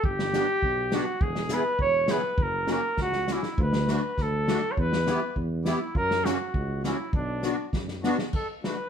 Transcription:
0.04 tuba G1, flugelhorn G4, kick
0.19 snare
0.33 accordion B3 D4 G4, snare, hi-hat pedal
0.62 tuba B1, kick
0.92 accordion B3 D4 G4, flugelhorn F#4, snare, hi-hat pedal
1.21 tuba E1, flugelhorn G#4, kick
1.35 snare
1.49 accordion B3 E4 G#4, snare, hi-hat pedal
1.54 flugelhorn B4
1.78 tuba E1, flugelhorn C#5, kick
2.08 accordion B3 E4 G#4, flugelhorn B4, snare, hi-hat pedal
2.38 tuba F#1, kick
2.43 flugelhorn A#4
2.67 accordion A#3 C#4 F#4, snare, hi-hat pedal
2.72 flugelhorn A#4
2.97 tuba C#2, kick, snare
3.02 flugelhorn F#4
3.12 snare
3.27 accordion A#3 C#4 F#4, snare, hi-hat pedal
3.33 flugelhorn E4
3.43 snare
3.58 tuba D2, flugelhorn B4, kick
3.73 snare
3.87 accordion A3 D4 F#4, snare, hi-hat pedal
3.93 flugelhorn B4
4.17 tuba D2, kick, snare
4.22 flugelhorn A4
4.47 accordion A3 D4 F#4, snare, hi-hat pedal
4.72 flugelhorn C#5
4.77 tuba E2, flugelhorn B4, kick
4.93 snare
5.06 accordion B3 E4 G4, snare, hi-hat pedal
5.36 tuba E2, kick
5.65 accordion B3 E4 G4, flugelhorn E4, snare, hi-hat pedal
5.95 tuba F#2, flugelhorn A#4, kick
6.11 snare
6.24 accordion A#3 C#4 F#4, flugelhorn F#4, snare, hi-hat pedal
6.54 tuba C#2, kick
6.83 accordion A#3 C#4 F#4, flugelhorn E4, snare, hi-hat pedal
7.13 tuba B1, flugelhorn D4, kick
7.42 accordion B3 D4 F#4, snare, hi-hat pedal
7.73 tuba F#2, kick, snare
7.88 snare
8.03 accordion B3 D4 F#4, snare, hi-hat pedal
8.19 snare
8.33 flugelhorn A4, kick, crash
8.63 accordion A3 D4 F#4, flugelhorn B4, snare

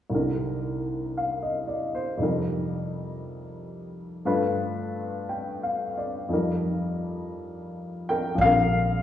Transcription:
0.10 upright piano C2 C3 D3 D#3
0.15 upright piano A#4
1.17 upright piano F5
1.42 upright piano D#5
1.67 upright piano D5
1.95 upright piano C5
2.17 upright piano F2 C3 G3 D#4
2.23 upright piano A#4
4.25 upright piano G2 D3 A3 F4 B4
5.29 upright piano G5
5.63 upright piano F5
5.98 upright piano D5
6.29 upright piano F2 F3 G3 D#4
6.33 upright piano A#4
8.09 upright piano A#4 G5
8.35 upright bass A#1, upright piano F3 G3
8.41 upright piano C4 A#4 F5
8.45 upright piano D3

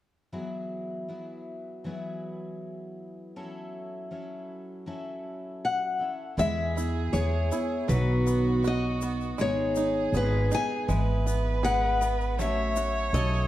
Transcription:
0.33 twelve-string acoustic guitar E3 F#3 B3 E4 G#4
1.08 twelve-string acoustic guitar F#3 B3 E4 G#4
1.84 twelve-string acoustic guitar E3 F#3 B3 E4 G#4
3.36 twelve-string acoustic guitar F#3 C#4 E4 A4
4.11 twelve-string acoustic guitar F#3 C#4 E4 A4
4.86 twelve-string acoustic guitar F#3 C#4 E4 A4
5.65 steel-string acoustic guitar F#5
5.99 twelve-string acoustic guitar C#4 E4 A4
6.37 upright bass E2, twelve-string acoustic guitar E3 G#3 B3 E4 G#4, five-string banjo G#3, fiddle G#4, steel-string acoustic guitar E5, shaker
6.75 twelve-string acoustic guitar B3 E4 G#4, five-string banjo E4, shaker
7.13 upright bass E2, twelve-string acoustic guitar G#3 B3 E4 G#4, five-string banjo G#4, steel-string acoustic guitar C#5, shaker
7.51 twelve-string acoustic guitar B3 E4 G#4, five-string banjo E4, shaker
7.88 upright bass B1, twelve-string acoustic guitar B2 D#3 F#3 B3 D#4 B4, five-string banjo F#3, fiddle F#4, steel-string acoustic guitar B4, shaker
8.27 five-string banjo B3, shaker
8.62 twelve-string acoustic guitar F#3 B3 D#4 B4, five-string banjo F#4, shaker
8.67 steel-string acoustic guitar D#5
9.01 five-string banjo B3, shaker
9.21 shaker
9.38 upright bass G#1, twelve-string acoustic guitar G#2 D#3 G#3 B3 D#4 G#4, five-string banjo G#3, fiddle G#4, steel-string acoustic guitar C#5, shaker
9.76 five-string banjo D#4, shaker
10.12 upright bass G#1, twelve-string acoustic guitar G#3 B3 D#4 G#4, five-string banjo G#4, shaker
10.16 steel-string acoustic guitar B4
10.51 twelve-string acoustic guitar G#3 B3 D#4 G#4, five-string banjo D#4, steel-string acoustic guitar G#5, shaker
10.88 upright bass G#1, twelve-string acoustic guitar G#2 E3 G#3 B3 E4 G#4, five-string banjo G#3, fiddle B4, shaker
11.26 five-string banjo B3, shaker
11.63 twelve-string acoustic guitar G#3 B3 E4 G#4, five-string banjo G#4, steel-string acoustic guitar F#5, shaker
12.02 five-string banjo B3, shaker
12.21 shaker
12.37 upright bass A1, five-string banjo F#3, twelve-string acoustic guitar A3 C#4 F#4 A4, fiddle C#5, steel-string acoustic guitar E5, shaker
12.76 twelve-string acoustic guitar C#4 F#4 A4, five-string banjo F#4, shaker
13.13 upright bass B1, twelve-string acoustic guitar A3 C#4 F#4 A4, five-string banjo A4, steel-string acoustic guitar D#5, shaker

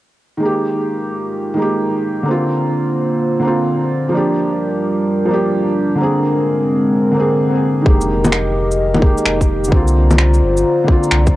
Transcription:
0.37 felt piano D#3 G#3, analog synth pad G#3 F4 G4
0.41 felt piano A#3, analog synth pad D#4 A#4
0.45 felt piano G4
1.54 felt piano D#3 G#3
1.59 felt piano A#3 G4
2.23 felt piano D3 A#3
2.28 analog synth pad A#3 D4 F4 C5, felt piano C4 F4
3.39 felt piano D3 A#3
3.45 felt piano C4 F4
4.09 felt piano F3 A#3, analog synth pad G3 A#4
4.14 felt piano D4 G4
5.25 felt piano F3 A#3
5.31 felt piano D4 G4
5.95 felt piano D3 A#3, analog synth pad G#3 C4 A#4
6.01 felt piano C4 G#4
7.12 felt piano D3 A#3
7.17 felt piano C4 G#4
7.81 felt piano D#3 G#3
7.86 sub bass F1, felt piano A#3 G4, analog synth pad G4 A#4 D#5, kick
8.01 shaker
8.24 low bongo, shaker
8.32 finger snap
8.71 shaker
8.94 felt piano D#3, low bongo
9.01 felt piano G#3 A#3, kick
9.06 felt piano G4
9.18 shaker
9.25 sub bass F1, finger snap
9.41 kick, shaker
9.64 felt piano D3, shaker
9.71 sub bass C2, felt piano A#3 C4, analog synth pad F4 C5 D5 A#5, kick
9.76 felt piano F4
9.88 shaker
10.11 low bongo, shaker
10.18 finger snap
10.34 shaker
10.42 sub bass G1
10.57 shaker
10.84 felt piano D3 A#3
10.88 felt piano C4 F4, kick
11.03 shaker
11.11 sub bass C2, finger snap
11.27 kick, shaker

